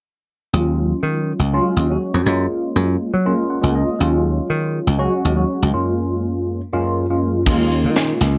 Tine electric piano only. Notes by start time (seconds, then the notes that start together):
0.53 F#3 G#3 C#4 F4
1.53 F#3 G#3 C#4 F4
1.90 F#3 G#3 C#4 F#4
2.27 G#3 A#3 C#4 F4
3.26 G#3 A#3 C#4 F4
3.50 F#5
3.61 G#3 A#3 C#4 F4
3.75 D#5
3.99 F#3 G#3 C#4 F4
4.98 F#3 G#3 C#4 F#4
5.36 F#3 G#3 C#4 F#4
5.73 F#2 G#3 A#3 C#4 F4
6.72 F#2 G#3 A#3 C#4 F4
7.10 F#2 G#3 A#3 C#4 F4
7.46 G#3 A#3 C#4 F4